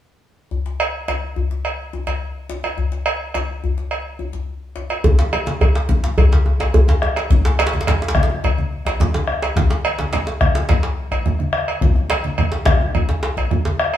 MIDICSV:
0, 0, Header, 1, 4, 480
1, 0, Start_track
1, 0, Tempo, 564972
1, 440, Time_signature, 4, 2, 24, 8
1, 11869, End_track
2, 0, Start_track
2, 0, Title_t, "Bombo"
2, 4288, Note_on_c, 9, 43, 86
2, 4372, Note_off_c, 9, 43, 0
2, 4887, Note_on_c, 9, 37, 27
2, 4972, Note_off_c, 9, 37, 0
2, 5007, Note_on_c, 9, 43, 86
2, 5092, Note_off_c, 9, 43, 0
2, 5249, Note_on_c, 9, 37, 28
2, 5334, Note_off_c, 9, 37, 0
2, 5604, Note_on_c, 9, 37, 24
2, 5604, Note_on_c, 9, 43, 62
2, 5689, Note_off_c, 9, 37, 0
2, 5689, Note_off_c, 9, 43, 0
2, 5725, Note_on_c, 9, 37, 27
2, 5810, Note_off_c, 9, 37, 0
2, 5847, Note_on_c, 9, 37, 27
2, 5932, Note_off_c, 9, 37, 0
2, 5964, Note_on_c, 9, 37, 78
2, 6049, Note_off_c, 9, 37, 0
2, 6205, Note_on_c, 9, 43, 86
2, 6290, Note_off_c, 9, 43, 0
2, 6809, Note_on_c, 9, 37, 26
2, 6894, Note_off_c, 9, 37, 0
2, 6922, Note_on_c, 9, 37, 82
2, 6922, Note_on_c, 9, 43, 83
2, 7006, Note_off_c, 9, 37, 0
2, 7006, Note_off_c, 9, 43, 0
2, 7165, Note_on_c, 9, 37, 25
2, 7250, Note_off_c, 9, 37, 0
2, 7521, Note_on_c, 9, 37, 24
2, 7521, Note_on_c, 9, 43, 57
2, 7606, Note_off_c, 9, 37, 0
2, 7606, Note_off_c, 9, 43, 0
2, 7642, Note_on_c, 9, 37, 27
2, 7727, Note_off_c, 9, 37, 0
2, 7762, Note_on_c, 9, 37, 25
2, 7847, Note_off_c, 9, 37, 0
2, 7880, Note_on_c, 9, 37, 73
2, 7965, Note_off_c, 9, 37, 0
2, 8121, Note_on_c, 9, 43, 79
2, 8206, Note_off_c, 9, 43, 0
2, 8720, Note_on_c, 9, 37, 27
2, 8805, Note_off_c, 9, 37, 0
2, 8843, Note_on_c, 9, 37, 88
2, 8843, Note_on_c, 9, 43, 89
2, 8928, Note_off_c, 9, 37, 0
2, 8928, Note_off_c, 9, 43, 0
2, 9442, Note_on_c, 9, 37, 29
2, 9442, Note_on_c, 9, 43, 66
2, 9527, Note_off_c, 9, 37, 0
2, 9527, Note_off_c, 9, 43, 0
2, 9562, Note_on_c, 9, 37, 32
2, 9647, Note_off_c, 9, 37, 0
2, 9678, Note_on_c, 9, 37, 32
2, 9762, Note_off_c, 9, 37, 0
2, 9794, Note_on_c, 9, 37, 91
2, 9879, Note_off_c, 9, 37, 0
2, 10036, Note_on_c, 9, 37, 32
2, 10036, Note_on_c, 9, 43, 104
2, 10121, Note_off_c, 9, 37, 0
2, 10121, Note_off_c, 9, 43, 0
2, 10156, Note_on_c, 9, 37, 31
2, 10241, Note_off_c, 9, 37, 0
2, 10395, Note_on_c, 9, 37, 30
2, 10480, Note_off_c, 9, 37, 0
2, 10519, Note_on_c, 9, 37, 32
2, 10604, Note_off_c, 9, 37, 0
2, 10756, Note_on_c, 9, 37, 104
2, 10756, Note_on_c, 9, 43, 105
2, 10841, Note_off_c, 9, 37, 0
2, 10841, Note_off_c, 9, 43, 0
2, 11120, Note_on_c, 9, 37, 34
2, 11205, Note_off_c, 9, 37, 0
2, 11238, Note_on_c, 9, 37, 34
2, 11323, Note_off_c, 9, 37, 0
2, 11358, Note_on_c, 9, 43, 69
2, 11443, Note_off_c, 9, 43, 0
2, 11474, Note_on_c, 9, 37, 32
2, 11559, Note_off_c, 9, 37, 0
2, 11720, Note_on_c, 9, 37, 98
2, 11805, Note_off_c, 9, 37, 0
2, 11869, End_track
3, 0, Start_track
3, 0, Title_t, "Djembe"
3, 435, Note_on_c, 9, 62, 17
3, 435, Note_on_c, 9, 64, 54
3, 520, Note_off_c, 9, 62, 0
3, 520, Note_off_c, 9, 64, 0
3, 559, Note_on_c, 9, 62, 46
3, 644, Note_off_c, 9, 62, 0
3, 685, Note_on_c, 9, 62, 19
3, 769, Note_off_c, 9, 62, 0
3, 919, Note_on_c, 9, 62, 58
3, 919, Note_on_c, 9, 63, 57
3, 1004, Note_off_c, 9, 62, 0
3, 1004, Note_off_c, 9, 63, 0
3, 1159, Note_on_c, 9, 64, 64
3, 1244, Note_off_c, 9, 64, 0
3, 1282, Note_on_c, 9, 62, 42
3, 1367, Note_off_c, 9, 62, 0
3, 1643, Note_on_c, 9, 62, 18
3, 1643, Note_on_c, 9, 63, 60
3, 1728, Note_off_c, 9, 62, 0
3, 1728, Note_off_c, 9, 63, 0
3, 1758, Note_on_c, 9, 62, 46
3, 1758, Note_on_c, 9, 64, 46
3, 1843, Note_off_c, 9, 62, 0
3, 1843, Note_off_c, 9, 64, 0
3, 2120, Note_on_c, 9, 62, 69
3, 2205, Note_off_c, 9, 62, 0
3, 2238, Note_on_c, 9, 63, 50
3, 2323, Note_off_c, 9, 63, 0
3, 2358, Note_on_c, 9, 62, 19
3, 2358, Note_on_c, 9, 64, 62
3, 2443, Note_off_c, 9, 62, 0
3, 2443, Note_off_c, 9, 64, 0
3, 2479, Note_on_c, 9, 62, 47
3, 2564, Note_off_c, 9, 62, 0
3, 2604, Note_on_c, 9, 62, 17
3, 2689, Note_off_c, 9, 62, 0
3, 2845, Note_on_c, 9, 62, 67
3, 2845, Note_on_c, 9, 63, 66
3, 2930, Note_off_c, 9, 62, 0
3, 2930, Note_off_c, 9, 63, 0
3, 3090, Note_on_c, 9, 64, 65
3, 3175, Note_off_c, 9, 64, 0
3, 3208, Note_on_c, 9, 62, 48
3, 3293, Note_off_c, 9, 62, 0
3, 3561, Note_on_c, 9, 62, 21
3, 3561, Note_on_c, 9, 63, 58
3, 3646, Note_off_c, 9, 62, 0
3, 3646, Note_off_c, 9, 63, 0
3, 3680, Note_on_c, 9, 62, 44
3, 3680, Note_on_c, 9, 64, 48
3, 3765, Note_off_c, 9, 62, 0
3, 3765, Note_off_c, 9, 64, 0
3, 4041, Note_on_c, 9, 62, 66
3, 4126, Note_off_c, 9, 62, 0
3, 4159, Note_on_c, 9, 63, 44
3, 4244, Note_off_c, 9, 63, 0
3, 4281, Note_on_c, 9, 62, 22
3, 4281, Note_on_c, 9, 64, 65
3, 4284, Note_off_c, 9, 64, 0
3, 4284, Note_on_c, 9, 64, 103
3, 4366, Note_off_c, 9, 62, 0
3, 4369, Note_off_c, 9, 64, 0
3, 4400, Note_on_c, 9, 62, 22
3, 4400, Note_on_c, 9, 63, 51
3, 4407, Note_off_c, 9, 62, 0
3, 4407, Note_on_c, 9, 62, 77
3, 4485, Note_off_c, 9, 63, 0
3, 4492, Note_off_c, 9, 62, 0
3, 4523, Note_on_c, 9, 62, 22
3, 4528, Note_on_c, 9, 63, 78
3, 4608, Note_off_c, 9, 62, 0
3, 4613, Note_off_c, 9, 63, 0
3, 4642, Note_on_c, 9, 62, 51
3, 4648, Note_off_c, 9, 62, 0
3, 4648, Note_on_c, 9, 62, 75
3, 4733, Note_off_c, 9, 62, 0
3, 4767, Note_on_c, 9, 64, 96
3, 4852, Note_off_c, 9, 64, 0
3, 4889, Note_on_c, 9, 62, 73
3, 4974, Note_off_c, 9, 62, 0
3, 5008, Note_on_c, 9, 63, 66
3, 5093, Note_off_c, 9, 63, 0
3, 5129, Note_on_c, 9, 62, 78
3, 5129, Note_on_c, 9, 63, 55
3, 5214, Note_off_c, 9, 62, 0
3, 5214, Note_off_c, 9, 63, 0
3, 5248, Note_on_c, 9, 64, 98
3, 5249, Note_off_c, 9, 64, 0
3, 5249, Note_on_c, 9, 62, 24
3, 5249, Note_on_c, 9, 64, 69
3, 5334, Note_off_c, 9, 62, 0
3, 5334, Note_off_c, 9, 64, 0
3, 5373, Note_on_c, 9, 62, 77
3, 5458, Note_off_c, 9, 62, 0
3, 5487, Note_on_c, 9, 62, 22
3, 5487, Note_on_c, 9, 63, 73
3, 5572, Note_off_c, 9, 62, 0
3, 5572, Note_off_c, 9, 63, 0
3, 5608, Note_on_c, 9, 62, 52
3, 5609, Note_off_c, 9, 62, 0
3, 5609, Note_on_c, 9, 62, 73
3, 5694, Note_off_c, 9, 62, 0
3, 5727, Note_on_c, 9, 63, 71
3, 5728, Note_on_c, 9, 64, 110
3, 5812, Note_off_c, 9, 63, 0
3, 5813, Note_off_c, 9, 64, 0
3, 5852, Note_on_c, 9, 62, 82
3, 5937, Note_off_c, 9, 62, 0
3, 5970, Note_on_c, 9, 63, 75
3, 6055, Note_off_c, 9, 63, 0
3, 6091, Note_on_c, 9, 62, 65
3, 6175, Note_off_c, 9, 62, 0
3, 6204, Note_on_c, 9, 62, 22
3, 6204, Note_on_c, 9, 64, 73
3, 6289, Note_off_c, 9, 62, 0
3, 6289, Note_off_c, 9, 64, 0
3, 6330, Note_on_c, 9, 62, 93
3, 6332, Note_off_c, 9, 62, 0
3, 6332, Note_on_c, 9, 62, 21
3, 6332, Note_on_c, 9, 63, 54
3, 6417, Note_off_c, 9, 62, 0
3, 6417, Note_off_c, 9, 63, 0
3, 6454, Note_on_c, 9, 62, 85
3, 6513, Note_off_c, 9, 62, 0
3, 6513, Note_on_c, 9, 62, 104
3, 6570, Note_off_c, 9, 62, 0
3, 6570, Note_on_c, 9, 62, 52
3, 6633, Note_off_c, 9, 62, 0
3, 6633, Note_on_c, 9, 62, 75
3, 6695, Note_off_c, 9, 62, 0
3, 6695, Note_on_c, 9, 62, 95
3, 6780, Note_off_c, 9, 62, 0
3, 6814, Note_on_c, 9, 62, 67
3, 6868, Note_off_c, 9, 62, 0
3, 6868, Note_on_c, 9, 62, 96
3, 6953, Note_off_c, 9, 62, 0
3, 6991, Note_on_c, 9, 62, 72
3, 7049, Note_on_c, 9, 63, 54
3, 7076, Note_off_c, 9, 62, 0
3, 7134, Note_off_c, 9, 63, 0
3, 7169, Note_on_c, 9, 62, 22
3, 7169, Note_on_c, 9, 64, 71
3, 7254, Note_off_c, 9, 62, 0
3, 7254, Note_off_c, 9, 64, 0
3, 7414, Note_on_c, 9, 62, 22
3, 7499, Note_off_c, 9, 62, 0
3, 7532, Note_on_c, 9, 62, 67
3, 7533, Note_off_c, 9, 62, 0
3, 7533, Note_on_c, 9, 62, 56
3, 7618, Note_off_c, 9, 62, 0
3, 7646, Note_on_c, 9, 63, 73
3, 7653, Note_on_c, 9, 62, 78
3, 7731, Note_off_c, 9, 63, 0
3, 7738, Note_off_c, 9, 62, 0
3, 7768, Note_on_c, 9, 62, 76
3, 7853, Note_off_c, 9, 62, 0
3, 8006, Note_on_c, 9, 62, 70
3, 8091, Note_off_c, 9, 62, 0
3, 8127, Note_on_c, 9, 62, 81
3, 8130, Note_off_c, 9, 62, 0
3, 8130, Note_on_c, 9, 62, 20
3, 8130, Note_on_c, 9, 64, 70
3, 8215, Note_off_c, 9, 62, 0
3, 8215, Note_off_c, 9, 64, 0
3, 8245, Note_on_c, 9, 62, 74
3, 8250, Note_off_c, 9, 62, 0
3, 8250, Note_on_c, 9, 62, 22
3, 8250, Note_on_c, 9, 63, 51
3, 8334, Note_off_c, 9, 62, 0
3, 8334, Note_off_c, 9, 63, 0
3, 8372, Note_on_c, 9, 62, 22
3, 8457, Note_off_c, 9, 62, 0
3, 8484, Note_on_c, 9, 62, 75
3, 8485, Note_off_c, 9, 62, 0
3, 8485, Note_on_c, 9, 62, 51
3, 8570, Note_off_c, 9, 62, 0
3, 8603, Note_on_c, 9, 62, 73
3, 8688, Note_off_c, 9, 62, 0
3, 8725, Note_on_c, 9, 62, 70
3, 8810, Note_off_c, 9, 62, 0
3, 8963, Note_on_c, 9, 63, 55
3, 8964, Note_on_c, 9, 62, 80
3, 9048, Note_off_c, 9, 63, 0
3, 9049, Note_off_c, 9, 62, 0
3, 9080, Note_on_c, 9, 62, 75
3, 9081, Note_off_c, 9, 62, 0
3, 9081, Note_on_c, 9, 62, 23
3, 9081, Note_on_c, 9, 64, 68
3, 9166, Note_off_c, 9, 62, 0
3, 9166, Note_off_c, 9, 64, 0
3, 9202, Note_on_c, 9, 62, 78
3, 9287, Note_off_c, 9, 62, 0
3, 9326, Note_on_c, 9, 62, 22
3, 9411, Note_off_c, 9, 62, 0
3, 9446, Note_on_c, 9, 62, 49
3, 9531, Note_off_c, 9, 62, 0
3, 9563, Note_on_c, 9, 63, 69
3, 9648, Note_off_c, 9, 63, 0
3, 10045, Note_on_c, 9, 64, 65
3, 10130, Note_off_c, 9, 64, 0
3, 10160, Note_on_c, 9, 63, 52
3, 10245, Note_off_c, 9, 63, 0
3, 10277, Note_on_c, 9, 62, 98
3, 10362, Note_off_c, 9, 62, 0
3, 10399, Note_on_c, 9, 62, 47
3, 10484, Note_off_c, 9, 62, 0
3, 10634, Note_on_c, 9, 62, 71
3, 10639, Note_off_c, 9, 62, 0
3, 10639, Note_on_c, 9, 62, 20
3, 10724, Note_off_c, 9, 62, 0
3, 10751, Note_on_c, 9, 62, 94
3, 10836, Note_off_c, 9, 62, 0
3, 10884, Note_on_c, 9, 62, 20
3, 10884, Note_on_c, 9, 63, 53
3, 10969, Note_off_c, 9, 62, 0
3, 10969, Note_off_c, 9, 63, 0
3, 11000, Note_on_c, 9, 64, 62
3, 11085, Note_off_c, 9, 64, 0
3, 11118, Note_on_c, 9, 62, 71
3, 11122, Note_off_c, 9, 62, 0
3, 11122, Note_on_c, 9, 62, 21
3, 11207, Note_off_c, 9, 62, 0
3, 11238, Note_on_c, 9, 62, 87
3, 11245, Note_off_c, 9, 62, 0
3, 11245, Note_on_c, 9, 62, 19
3, 11330, Note_off_c, 9, 62, 0
3, 11360, Note_on_c, 9, 62, 49
3, 11445, Note_off_c, 9, 62, 0
3, 11481, Note_on_c, 9, 63, 67
3, 11566, Note_off_c, 9, 63, 0
3, 11599, Note_on_c, 9, 62, 72
3, 11684, Note_off_c, 9, 62, 0
3, 11723, Note_on_c, 9, 62, 22
3, 11808, Note_off_c, 9, 62, 0
3, 11869, End_track
4, 0, Start_track
4, 0, Title_t, "Drums"
4, 679, Note_on_c, 9, 56, 60
4, 764, Note_off_c, 9, 56, 0
4, 920, Note_on_c, 9, 56, 47
4, 1005, Note_off_c, 9, 56, 0
4, 1400, Note_on_c, 9, 56, 44
4, 1485, Note_off_c, 9, 56, 0
4, 1759, Note_on_c, 9, 56, 44
4, 1844, Note_off_c, 9, 56, 0
4, 2243, Note_on_c, 9, 56, 46
4, 2328, Note_off_c, 9, 56, 0
4, 2597, Note_on_c, 9, 56, 63
4, 2682, Note_off_c, 9, 56, 0
4, 2840, Note_on_c, 9, 56, 49
4, 2925, Note_off_c, 9, 56, 0
4, 3322, Note_on_c, 9, 56, 41
4, 3407, Note_off_c, 9, 56, 0
4, 4164, Note_on_c, 9, 56, 44
4, 4249, Note_off_c, 9, 56, 0
4, 4284, Note_on_c, 9, 63, 70
4, 4284, Note_on_c, 9, 64, 73
4, 4369, Note_off_c, 9, 63, 0
4, 4369, Note_off_c, 9, 64, 0
4, 4527, Note_on_c, 9, 56, 59
4, 4529, Note_on_c, 9, 63, 21
4, 4612, Note_off_c, 9, 56, 0
4, 4613, Note_off_c, 9, 63, 0
4, 4646, Note_on_c, 9, 63, 53
4, 4731, Note_off_c, 9, 63, 0
4, 4767, Note_on_c, 9, 64, 70
4, 4770, Note_on_c, 9, 56, 48
4, 4852, Note_off_c, 9, 64, 0
4, 4855, Note_off_c, 9, 56, 0
4, 5003, Note_on_c, 9, 63, 69
4, 5088, Note_off_c, 9, 63, 0
4, 5128, Note_on_c, 9, 63, 23
4, 5213, Note_off_c, 9, 63, 0
4, 5247, Note_on_c, 9, 64, 71
4, 5251, Note_on_c, 9, 56, 43
4, 5332, Note_off_c, 9, 64, 0
4, 5336, Note_off_c, 9, 56, 0
4, 5368, Note_on_c, 9, 63, 59
4, 5453, Note_off_c, 9, 63, 0
4, 5612, Note_on_c, 9, 56, 43
4, 5697, Note_off_c, 9, 56, 0
4, 5728, Note_on_c, 9, 63, 24
4, 5728, Note_on_c, 9, 64, 73
4, 5813, Note_off_c, 9, 63, 0
4, 5813, Note_off_c, 9, 64, 0
4, 5847, Note_on_c, 9, 63, 57
4, 5932, Note_off_c, 9, 63, 0
4, 6086, Note_on_c, 9, 56, 49
4, 6171, Note_off_c, 9, 56, 0
4, 6207, Note_on_c, 9, 63, 72
4, 6207, Note_on_c, 9, 64, 70
4, 6292, Note_off_c, 9, 63, 0
4, 6292, Note_off_c, 9, 64, 0
4, 6448, Note_on_c, 9, 56, 68
4, 6448, Note_on_c, 9, 63, 20
4, 6533, Note_off_c, 9, 56, 0
4, 6533, Note_off_c, 9, 63, 0
4, 6573, Note_on_c, 9, 63, 47
4, 6658, Note_off_c, 9, 63, 0
4, 6689, Note_on_c, 9, 56, 50
4, 6690, Note_on_c, 9, 64, 73
4, 6774, Note_off_c, 9, 56, 0
4, 6775, Note_off_c, 9, 64, 0
4, 6928, Note_on_c, 9, 63, 73
4, 7013, Note_off_c, 9, 63, 0
4, 7051, Note_on_c, 9, 63, 21
4, 7136, Note_off_c, 9, 63, 0
4, 7171, Note_on_c, 9, 64, 63
4, 7175, Note_on_c, 9, 56, 49
4, 7256, Note_off_c, 9, 64, 0
4, 7260, Note_off_c, 9, 56, 0
4, 7291, Note_on_c, 9, 63, 55
4, 7376, Note_off_c, 9, 63, 0
4, 7532, Note_on_c, 9, 56, 45
4, 7617, Note_off_c, 9, 56, 0
4, 7649, Note_on_c, 9, 63, 24
4, 7649, Note_on_c, 9, 64, 80
4, 7734, Note_off_c, 9, 63, 0
4, 7734, Note_off_c, 9, 64, 0
4, 7770, Note_on_c, 9, 63, 57
4, 7855, Note_off_c, 9, 63, 0
4, 8010, Note_on_c, 9, 56, 46
4, 8095, Note_off_c, 9, 56, 0
4, 8131, Note_on_c, 9, 63, 70
4, 8131, Note_on_c, 9, 64, 72
4, 8216, Note_off_c, 9, 63, 0
4, 8216, Note_off_c, 9, 64, 0
4, 8366, Note_on_c, 9, 56, 62
4, 8372, Note_on_c, 9, 63, 20
4, 8451, Note_off_c, 9, 56, 0
4, 8457, Note_off_c, 9, 63, 0
4, 8491, Note_on_c, 9, 63, 51
4, 8576, Note_off_c, 9, 63, 0
4, 8608, Note_on_c, 9, 56, 50
4, 8609, Note_on_c, 9, 64, 70
4, 8693, Note_off_c, 9, 56, 0
4, 8694, Note_off_c, 9, 64, 0
4, 8845, Note_on_c, 9, 63, 72
4, 8930, Note_off_c, 9, 63, 0
4, 8967, Note_on_c, 9, 63, 23
4, 9052, Note_off_c, 9, 63, 0
4, 9084, Note_on_c, 9, 56, 49
4, 9085, Note_on_c, 9, 64, 70
4, 9169, Note_off_c, 9, 56, 0
4, 9170, Note_off_c, 9, 64, 0
4, 9445, Note_on_c, 9, 56, 44
4, 9530, Note_off_c, 9, 56, 0
4, 9565, Note_on_c, 9, 63, 23
4, 9565, Note_on_c, 9, 64, 76
4, 9650, Note_off_c, 9, 63, 0
4, 9650, Note_off_c, 9, 64, 0
4, 9685, Note_on_c, 9, 63, 57
4, 9770, Note_off_c, 9, 63, 0
4, 9924, Note_on_c, 9, 56, 44
4, 10009, Note_off_c, 9, 56, 0
4, 10043, Note_on_c, 9, 63, 74
4, 10043, Note_on_c, 9, 64, 75
4, 10128, Note_off_c, 9, 63, 0
4, 10128, Note_off_c, 9, 64, 0
4, 10163, Note_on_c, 9, 63, 23
4, 10248, Note_off_c, 9, 63, 0
4, 10283, Note_on_c, 9, 56, 58
4, 10283, Note_on_c, 9, 63, 22
4, 10368, Note_off_c, 9, 56, 0
4, 10368, Note_off_c, 9, 63, 0
4, 10405, Note_on_c, 9, 63, 54
4, 10490, Note_off_c, 9, 63, 0
4, 10517, Note_on_c, 9, 56, 46
4, 10521, Note_on_c, 9, 63, 23
4, 10521, Note_on_c, 9, 64, 78
4, 10602, Note_off_c, 9, 56, 0
4, 10606, Note_off_c, 9, 63, 0
4, 10606, Note_off_c, 9, 64, 0
4, 10641, Note_on_c, 9, 63, 23
4, 10726, Note_off_c, 9, 63, 0
4, 10758, Note_on_c, 9, 63, 72
4, 10843, Note_off_c, 9, 63, 0
4, 11000, Note_on_c, 9, 56, 40
4, 11000, Note_on_c, 9, 64, 74
4, 11085, Note_off_c, 9, 56, 0
4, 11085, Note_off_c, 9, 64, 0
4, 11118, Note_on_c, 9, 63, 53
4, 11203, Note_off_c, 9, 63, 0
4, 11366, Note_on_c, 9, 56, 41
4, 11451, Note_off_c, 9, 56, 0
4, 11480, Note_on_c, 9, 63, 23
4, 11480, Note_on_c, 9, 64, 78
4, 11565, Note_off_c, 9, 63, 0
4, 11565, Note_off_c, 9, 64, 0
4, 11598, Note_on_c, 9, 63, 56
4, 11683, Note_off_c, 9, 63, 0
4, 11721, Note_on_c, 9, 63, 22
4, 11806, Note_off_c, 9, 63, 0
4, 11840, Note_on_c, 9, 56, 47
4, 11841, Note_on_c, 9, 63, 20
4, 11869, Note_off_c, 9, 56, 0
4, 11869, Note_off_c, 9, 63, 0
4, 11869, End_track
0, 0, End_of_file